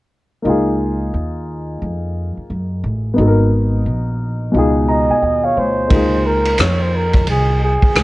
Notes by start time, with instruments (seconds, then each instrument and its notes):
0.42 upright bass C#2, upright piano A#3 D#4
0.47 upright piano F4 G#4
1.14 upright bass D#2
1.82 upright bass F2
2.37 muted upright bass stroke
2.50 upright bass F#2
2.84 upright bass A1
3.14 upright piano B3 D#4
3.18 upright bass G#1, upright piano F#4 A4
3.27 upright piano A#4
3.86 upright bass A#1
4.52 upright bass C#2, upright piano B2 D#4
4.56 upright piano F4 G#4
4.88 flugelhorn D#5, upright piano A#5
5.10 upright piano G#5, muted upright bass stroke
5.22 upright bass D#2, upright piano G#5
5.43 flugelhorn C#5, upright piano F5
5.57 upright bass D2, flugelhorn C5, upright piano C#5
5.88 upright bass C#2, upright piano A#3 D#4, kick, ride
5.92 upright piano F4 G#4
6.26 flugelhorn A#4
6.45 ride
6.58 upright bass F2, flugelhorn C#5, cross-stick, hi-hat pedal, ride
6.82 flugelhorn C5
6.96 flugelhorn A#4
7.13 kick, cross-stick, ride
7.27 upright bass C2, flugelhorn G#4, ride
7.64 flugelhorn G#4
7.82 muted upright bass stroke, kick, ride
7.95 upright bass C#2, cross-stick, hi-hat pedal, ride